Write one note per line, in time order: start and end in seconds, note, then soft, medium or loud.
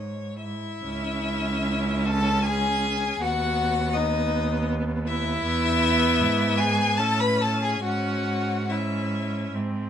0.00 0.58 G#2 medium
0.00 0.39 C#5 medium
0.40 2.08 E4 medium
0.40 2.07 E5 medium
0.84 3.16 C#2 medium
0.84 3.16 C#4 medium
2.05 2.44 A4 medium
2.05 2.44 A5 medium
2.43 3.23 G#4 medium
2.43 3.20 G#5 loud
3.20 5.39 D#2 medium
3.20 5.39 B3 medium
3.20 3.98 F#4 medium
3.20 3.95 F#5 loud
3.94 4.69 D#4 medium
3.94 4.68 D#5 medium
5.07 6.62 E4 loud
5.07 6.59 E5 loud
5.43 6.22 E2 medium
5.43 7.01 B3 medium
6.20 7.01 G#2 medium
6.58 7.01 G#4 medium
6.58 6.99 G#5 loud
6.97 7.83 A2 medium
6.97 7.83 C#4 medium
6.97 7.22 A4 medium
6.97 7.21 A5 loud
7.20 7.42 B4 medium
7.20 7.43 B5 loud
7.41 7.61 A4 medium
7.41 7.66 A5 medium
7.62 7.83 G#4 medium
7.62 7.84 G#5 medium
7.83 9.50 G#2 medium
7.83 8.67 C#4 medium
7.83 8.72 F#4 medium
7.83 8.72 F#5 medium
8.70 9.56 C#4 medium
8.70 9.55 E4 medium
8.70 9.54 E5 medium
9.54 9.90 G#2 medium
9.54 9.90 C4 soft